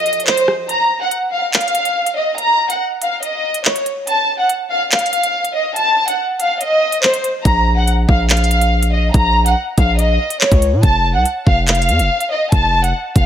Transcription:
0.00 0.64 F3 medium
0.00 0.65 D#4 medium
0.00 0.66 A4 medium
0.00 0.24 D#5 medium
0.06 closed hi-hat medium
0.13 closed hi-hat medium
0.20 closed hi-hat medium
0.27 0.44 C5 medium
0.27 clap loud
0.37 closed hi-hat medium
0.48 cross-stick medium
0.69 0.99 A#5 loud
0.69 closed hi-hat medium
1.01 1.10 F#5 medium
1.11 closed hi-hat medium
1.32 1.50 F5 medium
1.54 2.13 F5 medium
1.54 clap loud
1.54 closed hi-hat medium
1.61 closed hi-hat medium
1.68 closed hi-hat medium
1.75 closed hi-hat medium
1.85 closed hi-hat medium
2.06 closed hi-hat medium
2.17 2.34 D#5 medium
2.38 2.68 A#5 loud
2.38 closed hi-hat medium
2.70 2.78 F#5 medium
2.70 closed hi-hat medium
3.02 3.19 F5 medium
3.02 closed hi-hat medium
3.23 3.62 D#5 medium
3.23 closed hi-hat medium
3.54 closed hi-hat medium
3.65 3.82 C#5 medium
3.65 clap loud
3.76 closed hi-hat medium
3.86 closed hi-hat medium
4.07 4.37 A5 loud
4.07 closed hi-hat medium
4.39 4.47 F#5 medium
4.49 closed hi-hat medium
4.70 4.88 F5 medium
4.92 5.51 F5 medium
4.92 clap loud
4.92 closed hi-hat medium
4.99 closed hi-hat medium
5.06 closed hi-hat medium
5.13 closed hi-hat medium
5.23 closed hi-hat medium
5.45 closed hi-hat medium
5.55 5.72 D#5 medium
5.76 6.06 A5 loud
5.76 closed hi-hat medium
6.08 6.16 F#5 medium
6.08 closed hi-hat medium
6.40 6.57 F5 medium
6.40 closed hi-hat medium
6.61 7.00 D#5 medium
6.61 closed hi-hat medium
6.92 closed hi-hat medium
7.03 7.20 C5 medium
7.03 clap loud
7.14 closed hi-hat medium
7.24 closed hi-hat medium
7.45 8.06 A#1 loud
7.45 7.75 A#5 loud
7.45 kick loud
7.45 closed hi-hat medium
7.77 7.86 F#5 medium
7.87 closed hi-hat medium
8.08 9.10 A#1 loud
8.08 8.26 F5 medium
8.08 kick loud
8.30 8.89 F5 medium
8.30 clap loud
8.30 closed hi-hat medium
8.37 closed hi-hat medium
8.44 closed hi-hat medium
8.51 closed hi-hat medium
8.61 closed hi-hat medium
8.83 closed hi-hat medium
8.93 9.10 D#5 medium
9.14 9.55 A#1 loud
9.14 9.44 A#5 loud
9.14 kick loud
9.14 closed hi-hat medium
9.46 9.54 F#5 medium
9.46 closed hi-hat medium
9.78 10.18 A#1 loud
9.78 9.95 F5 medium
9.78 kick loud
9.78 closed hi-hat medium
9.99 10.38 D#5 medium
9.99 closed hi-hat medium
10.30 closed hi-hat medium
10.41 10.58 C#5 medium
10.41 clap loud
10.52 10.74 C#2 loud
10.52 kick loud
10.52 closed hi-hat medium
10.62 closed hi-hat medium
10.73 10.83 A#2 loud
10.83 11.16 F1 loud
10.83 11.13 A5 loud
10.83 kick loud
10.83 closed hi-hat medium
11.15 11.25 C2 loud
11.15 11.23 F#5 medium
11.25 closed hi-hat medium
11.47 11.90 F1 loud
11.47 11.64 F5 medium
11.47 kick medium
11.68 12.27 F5 medium
11.68 clap loud
11.68 closed hi-hat medium
11.75 closed hi-hat medium
11.82 closed hi-hat medium
11.89 12.01 F2 loud
11.89 closed hi-hat medium
11.99 12.09 F1 loud
11.99 closed hi-hat medium
12.21 closed hi-hat medium
12.31 12.48 D#5 medium
12.52 12.93 F1 loud
12.52 12.82 A5 loud
12.52 kick loud
12.52 closed hi-hat medium
12.84 12.92 F#5 medium
12.84 closed hi-hat medium
13.16 13.26 F1 loud
13.16 13.26 F5 medium
13.16 kick loud
13.16 closed hi-hat medium

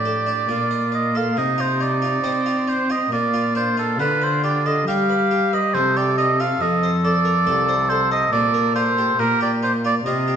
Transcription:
0.00 0.46 A2 soft
0.00 0.48 A2 medium
0.00 0.50 G4 medium
0.00 0.91 D5 medium
0.05 0.29 A4 soft
0.27 0.50 D4 soft
0.49 1.33 A#2 soft
0.49 1.38 A#2 medium
0.49 1.39 F4 medium
0.49 0.72 D5 soft
0.71 0.93 D#5 soft
0.92 1.16 D5 soft
0.92 1.18 D#5 medium
1.15 1.37 A4 soft
1.15 1.40 F5 medium
1.37 2.24 C3 medium
1.37 2.21 C3 soft
1.37 2.84 D#4 medium
1.37 1.62 D#5 medium
1.58 1.82 F4 soft
1.58 1.83 C5 medium
1.80 2.04 D#4 soft
1.80 2.70 D5 medium
2.02 2.24 F4 soft
2.24 3.08 C4 medium
2.24 3.10 C4 medium
2.24 2.47 D#4 soft
2.46 2.69 F4 soft
2.67 2.91 D#4 soft
2.67 2.92 C5 medium
2.90 3.12 F4 soft
2.90 3.12 D#5 medium
3.11 4.00 A#2 medium
3.11 3.95 A#2 soft
3.11 4.83 F4 medium
3.11 3.55 D5 medium
3.34 3.57 F4 soft
3.55 3.78 D4 soft
3.55 3.77 C5 medium
3.77 3.99 D#4 soft
3.77 3.99 A4 medium
3.99 4.86 D3 medium
3.99 4.83 D3 medium
3.99 4.25 B4 medium
4.22 4.44 B4 soft
4.22 4.43 C5 medium
4.44 4.66 G4 soft
4.44 4.68 D5 medium
4.66 4.87 A4 soft
4.66 4.87 D#5 medium
4.86 5.75 G3 medium
4.86 5.70 G3 medium
4.86 5.75 G4 medium
4.86 5.10 G4 soft
4.86 5.56 F5 medium
5.10 5.32 B4 soft
5.31 5.54 G4 soft
5.53 5.74 B4 soft
5.53 5.75 D#5 medium
5.74 6.60 C3 medium
5.74 6.57 C3 medium
5.74 9.19 A4 medium
5.74 5.98 C5 medium
5.97 6.19 G4 soft
5.97 6.17 D5 medium
6.17 6.41 D#4 soft
6.17 6.42 D#5 medium
6.40 6.61 F4 soft
6.40 6.63 F5 medium
6.61 7.48 F2 medium
6.61 7.43 F2 medium
6.61 6.92 D#5 medium
6.83 7.05 C5 soft
7.05 7.27 A4 soft
7.05 7.91 D5 medium
7.25 7.47 A#4 soft
7.46 8.31 C2 medium
7.46 8.29 C2 medium
7.46 7.69 A4 soft
7.69 7.91 C5 soft
7.89 8.12 A4 soft
7.89 8.11 C5 medium
8.11 8.33 C5 soft
8.11 8.31 D#5 medium
8.32 9.17 A#2 medium
8.32 9.16 A#2 medium
8.32 8.75 D5 loud
8.54 8.77 A#4 soft
8.75 8.99 F4 soft
8.75 9.21 C5 medium
8.98 9.20 G4 soft
9.19 10.04 A#2 medium
9.19 10.02 A#2 medium
9.19 9.78 G4 medium
9.19 9.41 A#4 medium
9.41 9.64 G4 medium
9.41 9.51 D5 medium
9.63 9.85 D#4 soft
9.63 9.73 C5 medium
9.85 10.06 F4 soft
9.85 9.95 D5 medium
10.06 10.36 C3 medium
10.06 10.29 D#4 soft
10.06 10.36 F4 medium
10.06 10.36 D#5 medium
10.28 10.36 G4 soft

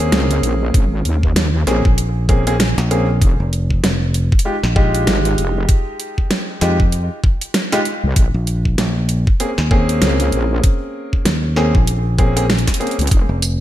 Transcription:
0.00 0.11 D#2 loud
0.00 1.64 A#3 medium
0.00 1.64 C4 medium
0.00 1.64 C#4 medium
0.00 1.64 G#4 loud
0.12 0.41 C#2 loud
0.12 snare loud
0.12 closed hi-hat medium
0.31 closed hi-hat medium
0.43 0.72 A#1 medium
0.43 closed hi-hat medium
0.74 1.03 G#1 loud
0.74 kick loud
0.74 closed hi-hat medium
1.05 1.65 D#2 medium
1.05 closed hi-hat medium
1.23 kick medium
1.36 snare loud
1.36 closed hi-hat medium
1.67 1.82 A#1 loud
1.67 1.82 A#3 medium
1.67 1.82 C4 medium
1.67 1.82 C#4 medium
1.67 1.82 G#4 medium
1.67 snare medium
1.67 closed hi-hat medium
1.85 2.75 A#1 loud
1.85 kick loud
1.98 closed hi-hat medium
2.29 2.43 A#3 medium
2.29 2.43 C4 medium
2.29 2.43 C#4 medium
2.29 2.43 G#4 medium
2.29 kick loud
2.29 closed hi-hat soft
2.47 2.53 A#3 loud
2.47 2.54 C4 medium
2.47 2.54 C#4 medium
2.47 2.54 G#4 loud
2.47 closed hi-hat medium
2.60 snare loud
2.60 closed hi-hat medium
2.78 3.20 A#1 loud
2.78 snare medium
2.78 closed hi-hat medium
2.91 3.05 A#3 medium
2.91 3.05 C4 medium
2.91 3.05 C#4 medium
2.91 3.05 G#4 medium
2.91 closed hi-hat medium
3.22 3.37 F1 loud
3.22 kick loud
3.22 closed hi-hat medium
3.40 3.82 F1 loud
3.53 closed hi-hat medium
3.70 kick medium
3.84 4.30 F1 loud
3.84 snare loud
3.84 closed hi-hat medium
4.14 closed hi-hat medium
4.32 kick loud
4.39 closed hi-hat medium
4.45 4.54 G#3 medium
4.45 4.54 D#4 medium
4.45 4.54 F4 medium
4.45 4.54 G4 loud
4.63 5.05 A#1 loud
4.63 snare medium
4.76 6.59 G#3 loud
4.76 6.59 D#4 medium
4.76 6.59 F4 medium
4.76 6.59 G4 loud
4.76 kick loud
4.95 closed hi-hat medium
5.07 5.36 G#1 loud
5.07 snare loud
5.07 closed hi-hat medium
5.25 closed hi-hat medium
5.38 5.67 F1 loud
5.38 closed hi-hat medium
5.69 kick loud
5.69 closed hi-hat medium
6.00 closed hi-hat medium
6.18 kick medium
6.31 snare loud
6.31 closed hi-hat medium
6.61 7.08 F2 medium
6.61 6.76 G#3 medium
6.61 6.76 D#4 medium
6.61 6.76 F4 medium
6.61 6.76 G4 medium
6.61 snare medium
6.61 closed hi-hat medium
6.80 kick loud
6.92 closed hi-hat medium
7.24 kick loud
7.41 closed hi-hat medium
7.54 snare loud
7.54 closed hi-hat medium
7.72 7.79 G#3 loud
7.72 7.79 D#4 medium
7.72 7.79 F4 medium
7.72 7.79 G4 loud
7.72 snare medium
7.72 closed hi-hat medium
7.85 closed hi-hat medium
8.04 8.14 C2 medium
8.16 8.32 A#1 loud
8.16 kick loud
8.16 closed hi-hat medium
8.34 8.76 A#1 loud
8.47 closed hi-hat medium
8.65 kick medium
8.78 9.25 A#1 loud
8.78 snare loud
8.78 closed hi-hat medium
9.09 closed hi-hat medium
9.27 kick loud
9.40 9.49 A#3 medium
9.40 9.49 C4 medium
9.40 9.49 C#4 medium
9.40 9.49 G#4 loud
9.40 closed hi-hat medium
9.58 10.00 D#2 loud
9.58 snare medium
9.71 11.54 A#3 medium
9.71 11.54 C4 medium
9.71 11.54 C#4 medium
9.71 11.54 G#4 loud
9.71 kick loud
9.89 closed hi-hat medium
10.02 10.31 C#2 loud
10.02 snare loud
10.02 closed hi-hat medium
10.20 closed hi-hat medium
10.32 10.62 A#1 loud
10.32 closed hi-hat medium
10.64 kick loud
10.64 closed hi-hat medium
11.13 kick medium
11.25 11.72 D#2 loud
11.25 snare loud
11.25 closed hi-hat medium
11.56 11.71 A#3 medium
11.56 11.71 C4 medium
11.56 11.71 C#4 medium
11.56 11.71 G#4 medium
11.56 snare medium
11.75 12.65 A#1 loud
11.75 kick loud
11.87 closed hi-hat medium
12.18 12.32 A#3 medium
12.18 12.32 C4 medium
12.18 12.32 C#4 medium
12.18 12.32 G#4 loud
12.18 kick loud
12.18 closed hi-hat soft
12.36 12.43 A#3 medium
12.36 12.43 C4 medium
12.36 12.43 C#4 medium
12.36 12.43 G#4 loud
12.36 closed hi-hat medium
12.50 snare loud
12.50 closed hi-hat soft
12.59 closed hi-hat soft
12.67 kick medium
12.67 snare medium
12.67 closed hi-hat medium
12.74 closed hi-hat medium
12.80 12.95 A#3 medium
12.80 12.95 C4 medium
12.80 12.95 C#4 medium
12.80 12.95 G#4 medium
12.80 closed hi-hat soft
12.87 closed hi-hat soft
12.91 closed hi-hat soft
12.99 13.09 C#2 loud
12.99 closed hi-hat soft
13.01 closed hi-hat medium
13.07 closed hi-hat medium
13.11 13.27 F1 loud
13.11 kick loud
13.11 closed hi-hat medium
13.29 13.60 F1 loud
13.42 closed hi-hat medium
13.42 tambourine medium

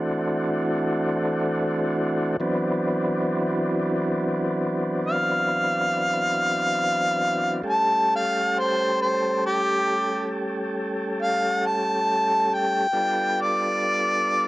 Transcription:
0.00 2.37 E3 medium
0.00 2.37 A3 medium
0.00 2.36 C4 medium
0.00 2.36 D4 medium
0.00 2.37 F#4 medium
2.40 7.62 E3 medium
2.40 7.62 F#3 medium
2.40 7.62 B3 medium
2.40 7.62 C4 medium
2.40 7.63 D4 medium
5.06 7.64 F5 loud
7.64 12.87 G3 medium
7.64 12.87 A3 medium
7.64 12.87 C#4 medium
7.64 12.88 G4 medium
7.64 12.87 A4 medium
7.70 8.11 A5 medium
8.16 8.61 F5 medium
8.59 8.99 C5 medium
9.02 9.42 C5 medium
9.46 10.29 G4 loud
11.22 11.68 F5 medium
11.66 12.55 A5 medium
12.54 13.36 G5 medium
12.93 14.48 G3 medium
12.93 14.48 B3 medium
12.93 14.48 D4 medium
12.93 14.48 F4 medium
12.93 14.48 A4 medium
13.41 14.48 D5 medium

